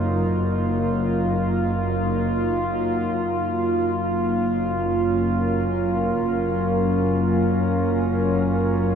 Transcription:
Already playing: double bass section F#1, ambient pad F#3 A#3 D#4 F4 A#4
3.14 double bass section F#1, synth drone F#3 C#4
3.36 ambient pad A#3
4.50 ambient pad C#4
4.67 ambient pad A#4

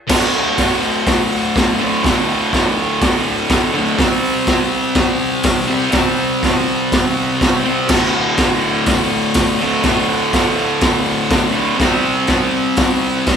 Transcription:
0.07 distorted electric guitar D2 A2, kick, snare, crash
0.13 distorted electric guitar D3
0.58 kick, snare, open hi-hat
1.07 kick, snare, open hi-hat
1.56 kick, snare, open hi-hat
1.79 distorted electric guitar A2 D3
1.84 distorted electric guitar D2
2.02 distorted electric guitar D2 A2, kick, snare, open hi-hat
2.08 distorted electric guitar D3
2.53 kick, snare, open hi-hat
3.01 kick, snare, open hi-hat
3.49 kick, snare, open hi-hat
3.74 distorted electric guitar A2 D3
3.80 distorted electric guitar D2
3.97 distorted electric guitar C3 G3, kick, snare, open hi-hat
4.03 distorted electric guitar C4
4.47 kick, snare, open hi-hat
4.95 kick, snare, open hi-hat
5.43 kick, snare, open hi-hat
5.68 distorted electric guitar G3 C4
5.72 distorted electric guitar C3
5.90 distorted electric guitar C3 G3, kick, snare, open hi-hat
5.96 distorted electric guitar C4
6.43 kick, snare, open hi-hat
6.92 kick, snare, open hi-hat
7.41 kick, snare, open hi-hat
7.64 distorted electric guitar G3 C4
7.68 distorted electric guitar C3
7.88 distorted electric guitar D2 A2, kick, snare, crash
7.92 distorted electric guitar D3
8.37 kick, snare, open hi-hat
8.86 kick, snare, open hi-hat
9.34 kick, snare, open hi-hat
9.60 distorted electric guitar A2 D3
9.65 distorted electric guitar D2
9.83 distorted electric guitar D2 A2, kick, snare, open hi-hat
9.88 distorted electric guitar D3
10.33 kick, snare, open hi-hat
10.81 kick, snare, open hi-hat
11.30 kick, snare, open hi-hat
11.52 distorted electric guitar A2 D3
11.58 distorted electric guitar D2
11.75 distorted electric guitar C3 G3
11.80 distorted electric guitar C4, kick, snare, open hi-hat
12.27 kick, snare, open hi-hat
12.76 kick, snare, open hi-hat
13.26 kick, snare, open hi-hat

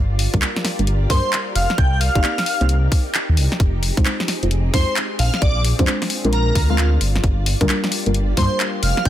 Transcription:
Already playing: detuned saw bass G1, string machine F4 G4 A#4 D5
0.19 open hi-hat
0.34 detuned saw bass D2, synth stab G3 A#3 D4 F4 A#4, kick, closed hi-hat
0.42 synth stab G3 A#3 D4 F4 A#4, clap, closed hi-hat
0.56 snare
0.65 snare, open hi-hat
0.79 detuned saw bass G1, synth stab G3 A#3 D4 F4 A#4, closed hi-hat
0.87 closed hi-hat
1.10 detuned saw bass G2, synth stab G3 A#3 D4 F4 A#4, digital synth lead C5, kick, open hi-hat
1.33 clap, closed hi-hat
1.55 detuned saw bass F1, digital synth lead F5, open hi-hat
1.70 snare, closed hi-hat
1.78 detuned saw bass C2, string machine D#4 G4, digital synth lead G5, kick, closed hi-hat
1.93 digital synth lead G5
2.01 digital synth lead F5, open hi-hat
2.15 detuned saw bass G1, synth stab A#3 C4 D#4 G4 D5, kick, closed hi-hat
2.23 synth stab A#3 C4 D#4 G4 D5, clap, closed hi-hat
2.38 snare, open hi-hat
2.46 open hi-hat
2.61 detuned saw bass C2, synth stab A#3 C4 D#4 G4 C5, closed hi-hat
2.69 closed hi-hat
2.92 kick, open hi-hat
3.15 clap, closed hi-hat
3.29 detuned saw bass D#2
3.37 detuned saw bass C2, open hi-hat
3.52 snare, closed hi-hat
3.60 detuned saw bass F1, string machine C4 G#4, kick, closed hi-hat
3.83 open hi-hat
3.97 detuned saw bass C2, synth stab G#3 C4 D#4 F4 C5, kick, closed hi-hat
4.05 synth stab G#3 C4 D#4 F4 C5, clap, closed hi-hat
4.20 snare
4.28 snare, open hi-hat
4.43 detuned saw bass F1, synth stab G#3 C4 D#4 F4 C5, closed hi-hat
4.51 closed hi-hat
4.74 detuned saw bass F2, synth stab G#3 C4 D#4 F4 C5, digital synth lead C5, kick, open hi-hat
4.96 clap, closed hi-hat
5.19 detuned saw bass A#1, string machine C4 F4 D5, digital synth lead F5, open hi-hat
5.34 snare, closed hi-hat
5.42 detuned saw bass A#1, digital synth lead D5, kick, closed hi-hat
5.64 open hi-hat
5.79 detuned saw bass F2, synth stab G#3 C4 D4 F4 C5, kick, closed hi-hat
5.87 synth stab G#3 C4 D4 F4 C5, clap, closed hi-hat
6.02 snare, open hi-hat
6.10 open hi-hat
6.25 detuned saw bass A#1, synth stab G#3 C4 D4 F4 A#4, closed hi-hat
6.33 digital synth lead A#4, closed hi-hat
6.55 detuned saw bass D2, kick, open hi-hat
6.70 synth stab G#3 C4 D4 F4 A#4, digital synth lead F4
6.78 digital synth lead F4, clap, closed hi-hat
7.01 detuned saw bass G1, string machine A#3 G4, open hi-hat
7.16 snare, closed hi-hat
7.24 detuned saw bass G1, kick, closed hi-hat
7.46 open hi-hat
7.61 detuned saw bass D2, synth stab G3 A#3 D4 F4 A#4, kick, closed hi-hat
7.69 synth stab G3 A#3 D4 F4, clap, closed hi-hat
7.84 snare
7.92 open hi-hat
8.06 detuned saw bass G1, synth stab G3 A#3 D4 F4 A#4, closed hi-hat
8.14 closed hi-hat
8.37 detuned saw bass G2, synth stab G3 A#3 D4 F4 A#4, digital synth lead C5, kick, open hi-hat
8.60 clap, closed hi-hat
8.83 detuned saw bass F1, digital synth lead F5, open hi-hat
8.97 snare, closed hi-hat
9.05 detuned saw bass C2, string machine D#4, digital synth lead G5, kick, closed hi-hat

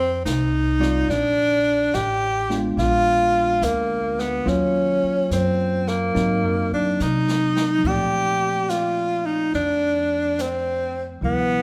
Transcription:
Already playing: upright bass F2, tenor saxophone C4
0.26 upright bass C2, tenor saxophone D#4, snare, hi-hat pedal
0.80 tine electric piano G3 C4 F4 D5, snare
1.09 upright bass A#1, tenor saxophone D4, brush sweep, snare
1.94 upright bass A1, tenor saxophone G4, snare, hi-hat pedal
2.50 tine electric piano G#3 B3 D4 F4, snare
2.77 upright bass A#1, tenor saxophone F4, brush sweep, snare
3.62 upright bass D2, tenor saxophone A#3, snare, hi-hat pedal
4.19 tenor saxophone B3, snare
4.45 upright bass D#2, tine electric piano F#3 A#3 C#4 F4, tenor saxophone C#4, brush sweep, snare
5.03 muted upright bass stroke
5.31 upright bass F#2, tenor saxophone C4, snare, hi-hat pedal
5.87 tenor saxophone A#3, snare
6.15 upright bass G#2, tine electric piano F#3 A#3 C4 D#4, brush sweep, snare
6.44 upright bass F#2
6.72 upright bass D#2, tenor saxophone D4
7.00 upright bass C3, tenor saxophone D#4, snare, hi-hat pedal
7.28 snare
7.56 snare
7.79 tine electric piano F3
7.83 upright bass A#2, tine electric piano A3 C4, brush sweep, kick, ride
7.87 tenor saxophone G4, tine electric piano D5
8.69 tenor saxophone F4, snare, hi-hat pedal
9.26 tenor saxophone D#4
9.53 upright bass F2, tenor saxophone D4, brush sweep, snare
10.39 tenor saxophone C4, snare, hi-hat pedal
11.21 upright bass D2, tine electric piano C3 F3 G3 E4, tenor saxophone B3, brush sweep

